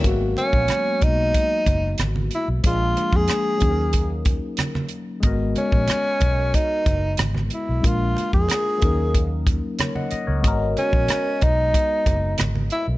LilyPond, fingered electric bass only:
\new Staff \with { instrumentName = "Fingered electric bass" } { \clef bass \time 4/4 \key gis \minor \tempo 4 = 92 gis,,8 r16 ais,,16 r8 b,,8 r8 fis,,8 gis,,8 r16 b,,16 | ais,,8 r16 eis,16 r8 dis,4~ dis,16 r4 r16 | gis,,8 r16 ais,,16 r8 b,,8 r8 fis,,8 gis,,8 r16 b,,16 | ais,,8 r16 eis,16 r8 dis,4~ dis,16 r4 cis,16 |
gis,,8 r16 ais,,16 r8 b,,8 r8 fis,,8 gis,,8 r16 b,,16 | }